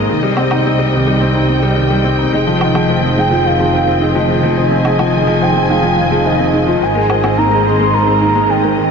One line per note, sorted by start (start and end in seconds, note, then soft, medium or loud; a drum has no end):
0.00 0.09 D#3 medium
0.00 0.11 G#3 medium
0.00 0.11 A#3 medium
0.00 0.11 C4 medium
0.00 2.29 D#5 medium
0.09 2.30 C2 medium
0.09 2.31 C3 medium
0.09 0.17 D#3 medium
0.09 6.78 C4 medium
0.09 2.31 G4 medium
0.09 4.53 G5 medium
0.23 0.36 G3 medium
0.37 0.45 C4 medium
0.37 low woodblock soft
0.51 0.59 D#4 medium
0.51 low woodblock medium
0.65 0.78 C4 medium
0.79 0.92 G3 medium
0.93 1.01 D#3 medium
1.07 1.20 G3 medium
1.21 1.29 C4 medium
1.35 1.43 D#4 medium
1.49 1.62 C4 medium
1.63 1.76 G3 medium
1.76 1.85 D#3 medium
1.90 2.04 G3 medium
2.04 2.13 C4 medium
2.19 2.27 D#4 medium
2.33 6.79 F1 medium
2.33 6.78 F3 medium
2.33 2.46 G#3 medium
2.33 2.38 D#4 medium
2.33 6.78 G#4 medium
2.33 8.91 D#5 medium
2.33 3.20 D#5 medium
2.47 2.60 F3 medium
2.61 2.69 D#3 medium
2.61 low woodblock soft
2.75 2.88 F3 medium
2.75 2.83 G#4 medium
2.75 low woodblock medium
2.89 3.02 D#3 medium
2.89 3.01 C5 medium
3.03 3.11 C4 medium
3.17 3.30 G#3 medium
3.17 3.22 D#4 medium
3.17 3.47 G5 medium
3.31 3.44 F3 medium
3.31 3.39 F4 medium
3.45 3.53 D#3 medium
3.45 4.03 F5 medium
3.59 3.73 F3 medium
3.59 3.67 G#4 medium
3.73 3.87 D#3 medium
3.73 3.85 C5 medium
3.87 3.95 C4 medium
4.01 4.15 G#3 medium
4.01 4.06 D#4 medium
4.01 4.44 D#5 medium
4.15 4.29 F3 medium
4.15 4.23 F4 medium
4.29 4.37 D#3 medium
4.43 4.56 F3 medium
4.43 4.51 G#4 medium
4.57 4.70 D#3 medium
4.57 4.69 C5 medium
4.57 5.44 D#5 medium
4.57 6.79 G#5 medium
4.71 4.79 C4 medium
4.85 4.99 G#3 medium
4.85 4.90 D#4 medium
4.85 low woodblock soft
4.99 5.13 F3 medium
4.99 5.07 F4 medium
4.99 low woodblock medium
5.13 5.21 D#3 medium
5.27 5.41 F3 medium
5.27 5.35 G#4 medium
5.41 5.55 D#3 medium
5.41 5.53 C5 medium
5.41 5.71 G5 medium
5.55 5.63 C4 medium
5.69 5.83 G#3 medium
5.69 5.74 D#4 medium
5.69 6.28 F5 medium
5.83 5.96 F3 medium
5.83 5.91 F4 medium
5.97 6.05 D#3 medium
6.11 6.24 F3 medium
6.11 6.19 G#4 medium
6.25 6.39 D#3 medium
6.25 6.37 C5 medium
6.25 6.68 D#5 medium
6.39 6.47 C4 medium
6.53 6.67 G#3 medium
6.53 6.58 D#4 medium
6.67 6.81 F3 medium
6.67 6.76 F4 medium
6.81 8.91 G#1 medium
6.81 6.89 D#3 medium
6.81 8.91 G#3 medium
6.81 8.91 G#4 medium
6.81 8.91 A#4 medium
6.81 8.91 C5 medium
6.81 7.39 G#5 medium
6.95 7.09 G#3 medium
6.95 7.04 A#4 medium
7.09 7.23 D#3 medium
7.09 7.22 C5 medium
7.09 low woodblock medium
7.23 7.31 C4 medium
7.23 low woodblock medium
7.37 7.51 A#3 medium
7.37 7.43 D#4 medium
7.37 7.67 A#5 medium
7.51 7.65 G#3 medium
7.51 7.60 G#4 medium
7.65 7.73 D#3 medium
7.65 7.95 C6 loud
7.79 7.93 G#3 medium
7.79 7.88 A#4 medium
7.93 8.07 D#3 medium
7.93 8.06 C5 medium
7.93 8.51 A#5 loud
8.07 8.15 C4 medium
8.21 8.35 A#3 medium
8.21 8.27 D#4 medium
8.35 8.49 G#3 medium
8.35 8.44 G#4 medium
8.49 8.58 D#3 medium
8.49 8.91 G5 medium
8.63 8.77 G#3 medium
8.63 8.72 A#4 medium
8.78 8.91 D#3 medium
8.78 8.90 C5 medium